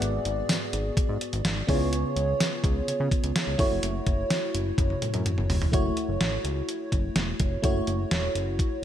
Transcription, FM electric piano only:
0.00 0.45 G#2 medium
0.00 1.64 B3 medium
0.00 1.64 F#4 medium
0.00 1.65 G#4 medium
0.00 1.65 D5 medium
1.67 2.36 C#3 medium
1.67 3.55 B3 medium
1.67 1.74 E4 medium
1.67 3.56 G#4 medium
1.67 3.56 C#5 medium
1.74 3.58 F4 medium
3.58 5.45 A3 medium
3.58 5.45 E4 medium
3.58 5.46 F#4 medium
3.58 5.46 C#5 medium
5.72 7.59 A3 medium
5.72 7.60 E4 medium
5.72 7.60 F#4 medium
5.72 7.60 C#5 medium
7.62 8.84 A3 medium
7.62 8.84 E4 medium
7.62 8.84 F#4 medium
7.62 8.84 C#5 medium

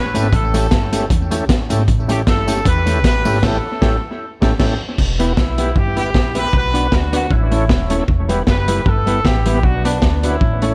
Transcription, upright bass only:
0.00 0.12 A1 medium
0.15 0.30 G#1 medium
0.32 0.66 A1 loud
0.72 1.05 G1 medium
1.10 1.49 E2 loud
1.49 1.67 A1 loud
1.70 1.85 G#1 loud
1.88 2.21 A1 loud
2.27 2.60 G1 loud
2.66 3.04 E2 loud
3.04 3.22 A1 medium
3.25 3.40 G#1 loud
3.43 3.57 A1 loud
3.82 3.97 A1 loud
4.42 4.54 A1 medium
4.59 4.74 A1 loud
4.98 5.31 E1 loud
5.37 5.70 B1 medium
5.76 6.09 G1 loud
6.14 6.47 A#1 medium
6.53 6.86 B1 loud
6.92 7.25 D2 medium
7.30 7.71 A1 loud
7.69 8.03 D#1 medium
8.08 8.41 E1 loud
8.47 8.80 F#1 loud
8.86 9.19 G1 loud
9.25 9.64 A1 medium
9.64 9.97 B1 loud
10.02 10.35 D2 medium
10.41 10.74 A1 loud

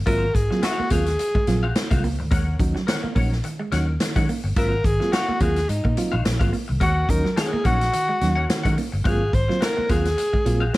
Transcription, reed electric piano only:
0.07 0.24 F#3 medium
0.07 0.24 A#3 medium
0.07 0.24 C4 medium
0.07 0.25 F4 loud
0.35 0.52 G#2 medium
0.35 0.52 D#3 medium
0.51 0.65 F#3 medium
0.51 0.65 A#3 medium
0.51 0.65 C4 medium
0.51 0.66 F4 medium
0.91 1.08 F#3 medium
0.91 1.09 A#3 medium
0.91 1.09 C4 medium
0.91 1.09 F4 medium
1.47 1.65 F#3 medium
1.47 1.65 A#3 medium
1.47 1.65 C4 medium
1.47 1.65 F4 loud
1.91 2.06 F#3 medium
1.91 2.06 A#3 medium
1.91 2.06 C4 medium
1.91 2.06 F4 medium
2.20 2.34 G#2 medium
2.20 2.31 D#3 medium
2.32 2.49 D#3 medium
2.60 2.77 F#3 loud
2.60 2.75 C#4 medium
2.60 2.75 D#4 medium
2.76 2.81 C#4 soft
2.76 2.81 D#4 soft
2.88 3.05 D#3 medium
3.16 3.33 F#3 medium
3.16 3.31 C#4 medium
3.16 3.31 D#4 medium
3.32 3.37 C#4 soft
3.32 3.37 D#4 soft
3.44 3.61 D#3 medium
3.72 3.90 F#3 medium
3.72 3.87 C#4 medium
3.72 3.87 D#4 medium
3.88 3.93 C#4 soft
3.88 3.93 D#4 soft
4.01 4.18 D#3 medium
4.16 4.30 F#3 medium
4.16 4.28 C#4 medium
4.16 4.28 D#4 medium
4.29 4.35 C#4 soft
4.29 4.35 D#4 soft
4.57 4.74 F#3 medium
4.57 4.74 A#3 medium
4.57 4.74 C4 medium
4.57 4.74 F4 loud
4.85 5.02 G#2 medium
4.85 5.02 D#3 medium
5.00 5.15 F#3 medium
5.00 5.15 A#3 medium
5.00 5.15 C4 medium
5.00 5.15 F4 medium
5.41 5.58 F#3 medium
5.41 5.58 A#3 medium
5.41 5.58 C4 medium
5.41 5.58 F4 medium
5.97 6.14 F#3 medium
5.97 6.14 A#3 medium
5.97 6.15 C4 medium
5.97 6.15 F4 loud
6.41 6.55 F#3 medium
6.41 6.55 A#3 medium
6.41 6.55 C4 medium
6.41 6.55 F4 medium
6.69 6.83 G#2 medium
6.69 6.81 D#3 medium
6.82 6.99 D#3 medium
7.09 7.27 F#3 medium
7.09 7.24 C#4 medium
7.09 7.24 D#4 loud
7.26 7.30 C#4 soft
7.26 7.30 D#4 soft
7.38 7.55 D#3 medium
7.66 7.83 F#3 medium
7.66 7.81 C#4 medium
7.66 7.81 D#4 medium
7.82 7.86 C#4 soft
7.82 7.86 D#4 soft
7.94 8.11 D#3 medium
8.22 8.39 F#3 medium
8.22 8.36 C#4 medium
8.22 8.36 D#4 medium
8.37 8.42 C#4 soft
8.37 8.42 D#4 soft
8.50 8.67 D#3 medium
8.65 8.79 F#3 medium
8.65 8.77 C#4 medium
8.65 8.77 D#4 medium
8.78 8.84 C#4 soft
8.78 8.84 D#4 soft
9.05 9.23 F#3 medium
9.05 9.23 A#3 medium
9.05 9.23 C4 medium
9.05 9.23 F4 loud
9.34 9.51 G#2 medium
9.34 9.51 D#3 medium
9.49 9.64 F#3 medium
9.49 9.64 A#3 medium
9.49 9.64 C4 medium
9.49 9.64 F4 medium
9.90 10.07 F#3 medium
9.90 10.07 A#3 medium
9.90 10.07 C4 medium
9.90 10.07 F4 medium
10.46 10.63 F#3 medium
10.46 10.63 A#3 medium
10.46 10.63 C4 medium
10.46 10.63 F4 loud

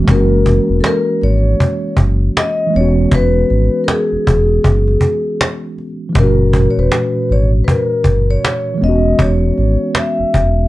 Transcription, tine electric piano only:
0.00 2.65 E3 medium
0.00 2.68 G#3 medium
0.08 2.69 A#3 medium
0.08 2.71 C#4 medium
0.15 2.73 F#4 medium
2.67 5.70 E3 medium
2.67 5.72 G#3 medium
2.74 5.73 B3 medium
2.74 5.75 C#4 medium
2.81 5.77 F#4 medium
6.09 8.73 E3 medium
6.09 8.76 G#3 medium
6.16 8.78 A#2 medium
6.16 8.79 C#4 medium
6.23 8.81 F#4 medium
8.74 10.68 E3 medium
8.74 10.68 G#3 medium
8.81 10.68 B3 medium
8.81 10.68 C#4 medium
8.89 10.68 F#4 medium

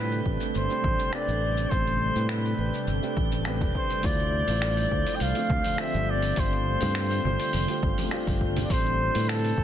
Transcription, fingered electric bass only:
0.00 0.20 A2 medium
0.26 0.37 A1 medium
0.55 0.66 G1 medium
0.84 0.95 A1 medium
1.28 1.65 A1 medium
1.71 2.09 A1 loud
2.16 2.53 A2 medium
2.58 2.70 A1 medium
2.87 2.99 G1 medium
3.17 3.63 A1 medium
3.62 3.71 E1 medium
4.04 4.42 D2 medium
4.48 4.85 A1 medium
4.91 5.03 D2 medium
5.21 5.32 C2 medium
5.50 5.61 D2 medium
5.94 6.31 G1 medium
6.37 6.75 G1 loud
6.82 7.19 G2 medium
7.25 7.36 G1 medium
7.54 7.65 F1 medium
7.83 7.94 G1 medium
8.28 8.64 G1 medium
8.70 9.08 A1 medium
9.15 9.52 A2 medium
9.58 9.64 A1 medium

